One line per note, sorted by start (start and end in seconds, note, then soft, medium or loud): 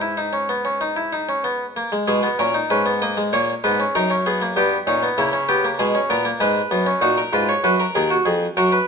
0.00 1.72 G#2 medium
0.00 0.17 E4 medium
0.00 1.72 B4 medium
0.17 0.33 D#4 medium
0.33 0.49 C#4 medium
0.49 0.65 B3 medium
0.65 0.81 C#4 medium
0.81 0.96 D#4 medium
0.96 1.12 E4 medium
1.13 1.28 D#4 medium
1.29 1.44 C#4 medium
1.44 1.64 B3 medium
1.76 1.92 A#3 medium
1.92 2.06 G#3 medium
2.08 2.27 B2 medium
2.08 2.23 G#3 medium
2.08 2.27 G#4 medium
2.23 2.38 B3 medium
2.39 2.58 A#2 medium
2.39 2.54 C#4 medium
2.39 2.59 A#4 medium
2.54 2.70 D#4 medium
2.70 3.31 G#2 medium
2.70 2.85 C#4 medium
2.70 2.90 B4 medium
2.86 3.01 B3 medium
3.02 3.17 A#3 medium
3.02 3.21 D#5 medium
3.17 3.32 G#3 medium
3.33 3.52 A#2 medium
3.33 3.52 A#3 medium
3.33 3.52 C#5 medium
3.64 3.83 G#2 medium
3.64 3.79 B3 medium
3.64 3.83 B4 medium
3.80 3.94 C#4 medium
3.95 4.55 F#2 medium
3.95 4.10 D#4 medium
3.95 4.14 A#4 medium
4.10 4.25 C#4 medium
4.26 4.41 B3 medium
4.26 4.45 G#4 medium
4.42 4.56 A#3 medium
4.56 4.75 G2 medium
4.56 4.76 B3 medium
4.56 4.76 G4 medium
4.87 5.06 A#2 medium
4.87 5.02 C#4 medium
4.87 5.06 D#4 medium
5.03 5.17 B3 medium
5.18 5.77 C#3 medium
5.18 5.33 A#3 medium
5.18 5.37 E4 medium
5.33 5.48 C#4 medium
5.49 5.63 B3 medium
5.49 5.68 G4 medium
5.64 5.79 A#3 medium
5.79 5.98 B2 medium
5.79 5.94 G#3 medium
5.79 5.98 G#4 medium
5.95 6.09 C#4 medium
6.10 6.29 A#2 medium
6.10 6.25 B3 medium
6.10 6.29 A#4 medium
6.25 6.40 A#3 medium
6.40 6.59 G#2 medium
6.40 6.60 G#3 medium
6.40 7.00 B4 medium
6.71 6.90 F#2 medium
6.71 6.86 B3 medium
6.86 7.01 C#4 medium
7.01 7.21 A#2 medium
7.01 7.21 D#4 medium
7.01 7.17 F#4 medium
7.18 7.32 A#4 medium
7.33 7.52 G#2 medium
7.33 7.52 F4 medium
7.33 7.48 B4 medium
7.49 7.63 C#5 medium
7.64 7.83 F#2 medium
7.64 7.83 F#4 medium
7.64 7.79 B4 medium
7.80 7.94 A#4 medium
7.95 8.14 D#2 medium
7.95 8.10 G#4 medium
7.95 8.14 A#4 loud
8.10 8.25 F#4 medium
8.26 8.45 F2 medium
8.26 8.45 G#4 loud
8.57 8.76 F#2 medium
8.57 8.76 F#4 loud
8.57 8.72 A#4 medium
8.72 8.87 B4 medium